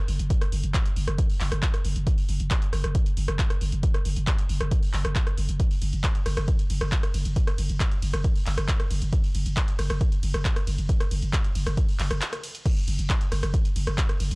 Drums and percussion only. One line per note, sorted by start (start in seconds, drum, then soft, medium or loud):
0.08 open hi-hat loud
0.19 closed hi-hat medium
0.30 kick loud
0.30 closed hi-hat medium
0.41 cross-stick medium
0.41 closed hi-hat medium
0.52 open hi-hat loud
0.64 closed hi-hat medium
0.74 kick loud
0.74 clap loud
0.74 closed hi-hat medium
0.86 closed hi-hat medium
0.96 open hi-hat loud
1.08 cross-stick medium
1.08 closed hi-hat medium
1.18 kick loud
1.18 closed hi-hat medium
1.30 open hi-hat medium
1.41 clap medium
1.41 open hi-hat loud
1.52 cross-stick medium
1.52 closed hi-hat medium
1.63 kick loud
1.63 clap loud
1.63 closed hi-hat medium
1.74 cross-stick medium
1.74 closed hi-hat medium
1.85 open hi-hat loud
1.96 closed hi-hat medium
2.07 kick loud
2.07 closed hi-hat medium
2.18 open hi-hat medium
2.29 open hi-hat loud
2.40 closed hi-hat medium
2.51 kick loud
2.51 clap loud
2.51 closed hi-hat medium
2.62 closed hi-hat medium
2.73 cross-stick medium
2.73 open hi-hat loud
2.84 cross-stick medium
2.84 closed hi-hat medium
2.95 kick loud
2.95 closed hi-hat medium
3.06 closed hi-hat medium
3.17 open hi-hat loud
3.28 cross-stick loud
3.28 closed hi-hat medium
3.39 kick loud
3.39 clap loud
3.39 closed hi-hat medium
3.50 cross-stick medium
3.50 closed hi-hat medium
3.61 open hi-hat loud
3.72 closed hi-hat medium
3.83 kick loud
3.83 closed hi-hat medium
3.94 cross-stick medium
3.94 closed hi-hat medium
4.05 open hi-hat loud
4.16 closed hi-hat soft
4.27 kick loud
4.27 clap loud
4.27 closed hi-hat medium
4.38 closed hi-hat medium
4.49 open hi-hat loud
4.61 cross-stick loud
4.61 closed hi-hat medium
4.71 kick loud
4.71 closed hi-hat medium
4.83 open hi-hat medium
4.93 clap medium
4.93 open hi-hat loud
5.05 cross-stick loud
5.05 closed hi-hat medium
5.16 kick loud
5.16 clap loud
5.16 closed hi-hat medium
5.27 cross-stick medium
5.27 closed hi-hat soft
5.38 open hi-hat loud
5.49 closed hi-hat medium
5.60 kick loud
5.60 closed hi-hat medium
5.71 open hi-hat medium
5.82 open hi-hat loud
5.82 ride medium
5.93 closed hi-hat medium
6.04 kick loud
6.04 clap loud
6.04 closed hi-hat medium
6.15 closed hi-hat medium
6.26 cross-stick medium
6.26 open hi-hat loud
6.26 ride medium
6.37 cross-stick loud
6.37 closed hi-hat medium
6.48 kick loud
6.48 closed hi-hat medium
6.59 closed hi-hat soft
6.70 open hi-hat loud
6.70 ride medium
6.81 cross-stick loud
6.81 closed hi-hat medium
6.92 kick loud
6.92 clap loud
6.92 closed hi-hat medium
7.03 cross-stick medium
7.03 closed hi-hat medium
7.14 open hi-hat loud
7.14 ride medium
7.25 closed hi-hat medium
7.36 kick loud
7.36 closed hi-hat medium
7.47 cross-stick medium
7.47 closed hi-hat medium
7.58 open hi-hat loud
7.58 ride medium
7.69 closed hi-hat soft
7.80 kick loud
7.80 clap loud
7.80 closed hi-hat medium
7.91 closed hi-hat soft
8.02 open hi-hat loud
8.02 ride medium
8.14 cross-stick loud
8.14 closed hi-hat medium
8.24 kick loud
8.24 closed hi-hat medium
8.36 open hi-hat medium
8.46 clap medium
8.46 open hi-hat loud
8.46 ride medium
8.58 cross-stick loud
8.58 closed hi-hat medium
8.68 kick loud
8.68 clap loud
8.68 closed hi-hat medium
8.80 cross-stick medium
8.80 closed hi-hat medium
8.91 open hi-hat loud
8.91 ride medium
9.02 closed hi-hat medium
9.13 kick loud
9.13 closed hi-hat medium
9.24 open hi-hat medium
9.35 open hi-hat loud
9.35 ride medium
9.46 closed hi-hat medium
9.57 kick loud
9.57 clap loud
9.57 closed hi-hat medium
9.68 closed hi-hat medium
9.79 cross-stick medium
9.79 open hi-hat loud
9.79 ride medium
9.90 cross-stick loud
9.90 closed hi-hat medium
10.01 kick loud
10.01 closed hi-hat medium
10.12 closed hi-hat soft
10.23 open hi-hat loud
10.23 ride medium
10.34 cross-stick loud
10.34 closed hi-hat medium
10.45 kick loud
10.45 clap loud
10.45 closed hi-hat medium
10.56 cross-stick medium
10.56 closed hi-hat medium
10.67 open hi-hat loud
10.67 ride medium
10.78 closed hi-hat medium
10.89 kick loud
10.89 closed hi-hat medium
11.00 cross-stick medium
11.00 closed hi-hat medium
11.11 open hi-hat loud
11.11 ride medium
11.22 closed hi-hat medium
11.33 kick loud
11.33 clap loud
11.33 closed hi-hat medium
11.44 closed hi-hat medium
11.55 open hi-hat loud
11.55 ride medium
11.67 cross-stick medium
11.67 closed hi-hat medium
11.77 kick loud
11.77 closed hi-hat medium
11.89 open hi-hat medium
11.99 clap medium
11.99 open hi-hat loud
11.99 ride medium
12.11 cross-stick loud
12.11 closed hi-hat medium
12.21 clap loud
12.21 closed hi-hat medium
12.33 cross-stick medium
12.33 closed hi-hat medium
12.44 open hi-hat loud
12.44 ride medium
12.55 closed hi-hat medium
12.66 kick loud
12.66 closed hi-hat medium
12.66 crash medium
12.77 open hi-hat medium
12.88 open hi-hat loud
12.88 ride medium
12.99 closed hi-hat medium
13.10 kick loud
13.10 clap loud
13.10 closed hi-hat medium
13.21 closed hi-hat medium
13.32 cross-stick medium
13.32 open hi-hat loud
13.32 ride medium
13.43 cross-stick medium
13.43 closed hi-hat medium
13.54 kick loud
13.54 closed hi-hat medium
13.65 closed hi-hat medium
13.76 open hi-hat loud
13.76 ride medium
13.87 cross-stick medium
13.87 closed hi-hat medium
13.98 kick loud
13.98 clap loud
13.98 closed hi-hat medium
14.09 cross-stick medium
14.09 closed hi-hat medium
14.20 open hi-hat loud
14.20 ride medium
14.31 closed hi-hat medium